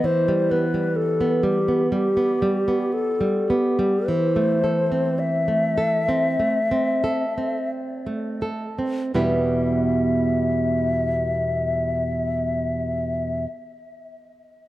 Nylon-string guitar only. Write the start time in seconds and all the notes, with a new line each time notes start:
0.04 E3
0.28 G3
0.51 B3
0.74 G3
1.21 B3
1.43 G3
1.68 B3
1.92 G3
2.17 B3
2.42 G3
2.68 B3
3.21 G3
3.50 B3
3.79 G3
4.08 E3
4.36 A3
4.64 A4
4.92 C4
5.48 A3
5.78 A4
6.09 C4
6.40 A3
6.71 C4
7.04 A4
7.38 C4
8.07 A3
8.42 A4
8.79 C4
9.14 E2 B2 G3 B3 E4 G4